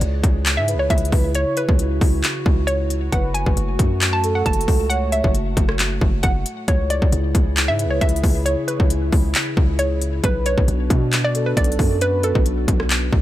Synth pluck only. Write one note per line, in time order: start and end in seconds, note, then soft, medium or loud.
0.00 0.54 D5 medium
0.57 0.76 E5 medium
0.79 0.88 C#5 medium
0.90 1.09 E5 medium
1.35 1.53 C#5 medium
1.57 2.64 B4 medium
2.67 2.86 C#5 medium
3.12 3.31 F#5 medium
3.34 4.09 G#5 medium
4.13 4.31 A5 medium
4.35 4.44 F#5 medium
4.46 4.64 A5 medium
4.90 5.08 F#5 medium
5.12 6.20 E5 medium
6.23 6.42 F#5 medium
6.68 6.86 C#5 medium
6.90 7.65 D5 medium
7.68 7.87 E5 medium
7.91 7.99 C#5 medium
8.01 8.20 E5 medium
8.46 8.64 C#5 medium
8.68 9.75 B4 medium
9.79 9.97 C#5 medium
10.25 10.43 B4 medium
10.46 11.20 C#5 medium
11.24 11.43 D5 medium
11.46 11.55 B4 medium
11.57 11.75 D5 medium
12.02 12.20 B4 medium
12.24 13.22 A4 medium